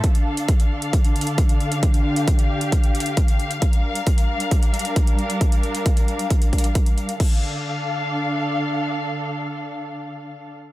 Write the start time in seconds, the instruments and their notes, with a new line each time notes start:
Already playing: string section A4
0.04 string section D3 D4 F5, kick, closed hi-hat
0.15 closed hi-hat
0.37 closed hi-hat
0.48 kick, closed hi-hat
0.60 closed hi-hat
0.82 closed hi-hat
0.93 kick, closed hi-hat
1.04 closed hi-hat
1.16 closed hi-hat
1.21 closed hi-hat
1.27 closed hi-hat
1.38 kick, closed hi-hat
1.49 closed hi-hat
1.60 closed hi-hat
1.72 closed hi-hat
1.83 string section G4, kick, closed hi-hat
1.94 closed hi-hat
2.16 closed hi-hat
2.28 kick, closed hi-hat
2.39 closed hi-hat
2.61 closed hi-hat
2.72 kick, closed hi-hat
2.84 closed hi-hat
2.95 closed hi-hat
3.00 closed hi-hat
3.06 closed hi-hat
3.17 kick, closed hi-hat
3.28 closed hi-hat
3.40 closed hi-hat
3.51 closed hi-hat
3.62 string section G3 D4 A#4, kick, closed hi-hat
3.73 closed hi-hat
3.95 closed hi-hat
4.07 kick, closed hi-hat
4.18 closed hi-hat
4.40 closed hi-hat
4.51 kick, closed hi-hat
4.63 closed hi-hat
4.74 closed hi-hat
4.79 closed hi-hat
4.85 closed hi-hat
4.96 kick, closed hi-hat
5.07 closed hi-hat
5.19 closed hi-hat
5.30 closed hi-hat
5.41 kick, closed hi-hat
5.52 closed hi-hat
5.63 closed hi-hat
5.75 closed hi-hat
5.86 kick, closed hi-hat
5.97 closed hi-hat
6.08 closed hi-hat
6.19 closed hi-hat
6.30 kick, closed hi-hat
6.42 closed hi-hat
6.53 kick, closed hi-hat
6.58 closed hi-hat
6.64 closed hi-hat
6.75 kick, closed hi-hat
6.86 closed hi-hat
6.98 closed hi-hat
7.09 closed hi-hat
7.20 string section D3 D4 A4 F5, kick, crash